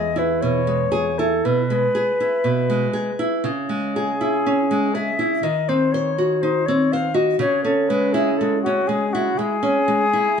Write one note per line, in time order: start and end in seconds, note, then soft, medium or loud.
0.00 1.41 E2 medium
0.00 0.31 G#4 soft
0.00 0.20 D#5 medium
0.16 0.57 E4 soft
0.16 0.43 B4 medium
0.41 0.83 B2 soft
0.41 1.20 C#5 medium
0.67 1.09 G#3 soft
0.92 1.34 G#4 soft
1.18 1.60 E4 soft
1.18 1.47 A4 medium
1.45 1.86 B2 soft
1.45 3.46 B4 medium
1.70 2.11 G#3 soft
1.95 2.35 G#4 soft
2.20 2.60 E4 soft
2.44 2.85 B2 soft
2.70 3.10 G#3 soft
2.93 3.35 G#4 medium
3.19 3.45 E4 medium
3.44 5.39 C#3 medium
3.69 4.10 G#3 soft
3.95 4.96 G#4 medium
3.95 4.36 G#4 soft
4.21 4.61 E4 soft
4.46 4.86 C#4 soft
4.71 5.10 G#3 medium
4.95 5.34 G#4 medium
4.95 5.45 E5 medium
5.19 5.44 E4 soft
5.43 7.35 D#3 medium
5.43 5.70 D#5 medium
5.69 6.09 C4 soft
5.69 5.93 C5 medium
5.92 6.34 C5 soft
5.92 6.43 C#5 medium
6.18 6.57 F#4 soft
6.42 6.68 D#4 soft
6.42 6.67 C5 medium
6.66 7.06 C4 medium
6.66 6.94 C#5 medium
6.92 7.31 C5 medium
6.92 7.16 F5 medium
7.14 7.39 F#4 medium
7.14 7.40 D#5 medium
7.39 9.33 C#3 medium
7.39 7.64 C#5 medium
7.64 8.04 C#4 soft
7.64 7.90 A4 medium
7.89 8.29 G#3 soft
7.89 8.14 B4 medium
8.13 8.54 E4 medium
8.13 8.39 G#4 medium
8.38 8.79 G#3 soft
8.38 8.62 A4 medium
8.63 9.04 C#4 medium
8.63 8.89 F#4 medium
8.88 9.28 G#3 medium
8.88 9.15 G#4 medium
9.13 9.53 E4 medium
9.13 9.39 F#4 medium
9.38 9.77 G#3 medium
9.38 10.40 G#4 loud
9.63 10.02 C#4 medium
9.88 10.27 G#3 soft
10.13 10.40 E4 medium